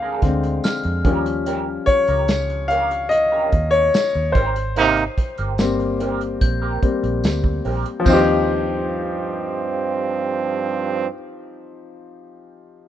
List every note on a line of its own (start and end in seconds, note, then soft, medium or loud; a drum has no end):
0.00 0.19 D2 medium
0.00 0.22 D3 medium
0.00 0.23 G#3 medium
0.00 0.23 C4 medium
0.00 0.21 D4 medium
0.00 0.21 G#4 medium
0.00 0.21 A#4 medium
0.00 0.59 F5 medium
0.00 1.07 G5 medium
0.00 1.07 G#5 loud
0.00 0.79 D6 medium
0.00 0.63 F6 medium
0.00 1.25 G6 medium
0.22 0.59 D2 medium
0.22 0.59 D3 medium
0.22 0.60 G#3 soft
0.22 0.60 C4 medium
0.22 muted clean electric guitar stroke soft
0.22 kick medium
0.22 snare soft
0.22 closed hi-hat medium
0.43 muted clean electric guitar stroke medium
0.43 closed hi-hat soft
0.64 1.42 F6 medium
0.64 snare loud
0.64 closed hi-hat medium
0.64 tambourine medium
0.83 1.05 F2 medium
0.83 muted clean electric guitar stroke soft
0.83 closed hi-hat soft
1.04 1.77 D#2 medium
1.04 4.31 F3 medium
1.04 4.31 G3 medium
1.04 1.24 C#4 medium
1.04 4.31 C#4 medium
1.04 1.24 G4 medium
1.04 1.24 A#4 medium
1.04 kick loud
1.04 closed hi-hat medium
1.26 muted clean electric guitar stroke soft
1.26 closed hi-hat medium
1.46 1.65 C#4 medium
1.46 1.65 G4 medium
1.46 1.66 A#4 medium
1.46 closed hi-hat loud
1.86 2.72 C#5 loud
1.86 muted clean electric guitar stroke soft
1.86 kick medium
1.86 closed hi-hat medium
2.08 3.49 C#2 medium
2.08 2.23 C#4 soft
2.08 2.23 G4 medium
2.08 2.23 A#4 medium
2.08 closed hi-hat medium
2.28 muted clean electric guitar stroke soft
2.28 snare loud
2.28 closed hi-hat medium
2.28 tambourine medium
2.50 muted clean electric guitar stroke soft
2.50 closed hi-hat soft
2.68 2.89 C#4 medium
2.68 2.89 G4 medium
2.68 2.90 A#4 medium
2.68 3.11 F5 loud
2.68 closed hi-hat medium
2.91 muted clean electric guitar stroke soft
2.91 closed hi-hat medium
3.09 3.74 D#5 loud
3.09 muted clean electric guitar stroke soft
3.09 closed hi-hat medium
3.32 3.51 C#4 medium
3.32 3.51 G4 medium
3.32 3.51 A#4 medium
3.52 3.89 D#2 medium
3.52 muted clean electric guitar stroke soft
3.52 kick medium
3.52 closed hi-hat medium
3.71 4.30 C#5 loud
3.71 muted clean electric guitar stroke soft
3.71 closed hi-hat soft
3.94 snare loud
3.94 closed hi-hat medium
3.94 tambourine medium
4.15 4.33 D#2 medium
4.15 muted clean electric guitar stroke soft
4.32 5.07 G#1 loud
4.32 4.54 C4 medium
4.32 4.54 G4 medium
4.32 4.54 A#4 medium
4.32 5.95 C5 medium
4.32 kick loud
4.32 closed hi-hat medium
4.56 muted clean electric guitar stroke soft
4.56 closed hi-hat medium
4.76 5.04 C3 medium
4.76 5.04 A#3 medium
4.76 4.95 C4 medium
4.76 5.04 D#4 loud
4.76 4.95 G4 medium
4.76 4.96 A#4 medium
4.76 closed hi-hat loud
4.97 closed hi-hat soft
5.18 muted clean electric guitar stroke soft
5.18 kick medium
5.18 closed hi-hat medium
5.38 6.37 G1 medium
5.38 5.53 C4 soft
5.38 5.53 G4 medium
5.38 5.53 A#4 medium
5.38 closed hi-hat medium
5.58 6.14 G3 medium
5.58 6.14 A#3 medium
5.58 6.14 C4 medium
5.58 muted clean electric guitar stroke soft
5.58 snare loud
5.58 closed hi-hat medium
5.58 tambourine medium
5.79 muted clean electric guitar stroke soft
5.79 closed hi-hat soft
6.00 6.19 C4 medium
6.00 6.19 G4 medium
6.00 6.19 A#4 medium
6.00 closed hi-hat medium
6.21 muted clean electric guitar stroke soft
6.21 closed hi-hat medium
6.41 6.77 A#1 medium
6.41 8.04 G6 medium
6.41 muted clean electric guitar stroke soft
6.41 kick medium
6.41 closed hi-hat medium
6.62 6.81 C4 medium
6.62 6.81 G4 medium
6.62 6.81 A#4 medium
6.82 7.19 G3 soft
6.82 7.20 A#3 soft
6.82 7.20 C4 medium
6.82 muted clean electric guitar stroke soft
6.82 muted fingered electric bass stroke soft
6.82 kick medium
6.82 closed hi-hat medium
7.03 7.21 A#1 medium
7.03 muted clean electric guitar stroke soft
7.03 closed hi-hat soft
7.24 7.60 D2 loud
7.24 snare loud
7.24 closed hi-hat medium
7.24 tambourine medium
7.44 muted clean electric guitar stroke soft
7.44 kick medium
7.65 7.83 A#1 medium
7.65 7.84 C4 medium
7.65 7.84 G4 medium
7.65 7.84 A#4 medium
7.65 open hi-hat soft
7.85 muted clean electric guitar stroke soft
7.85 closed hi-hat medium
8.00 11.00 F3 medium
8.04 11.07 D#2 medium
8.04 11.06 G2 medium
8.04 11.06 F3 medium
8.04 11.04 C4 medium
8.04 11.06 C4 medium
8.04 11.55 F4 medium
8.04 11.58 G4 medium
8.04 11.06 G6 medium
8.04 kick loud
8.04 crash medium
8.04 tambourine medium
8.09 11.09 D#4 medium
8.09 11.60 C5 medium
8.13 11.13 G4 medium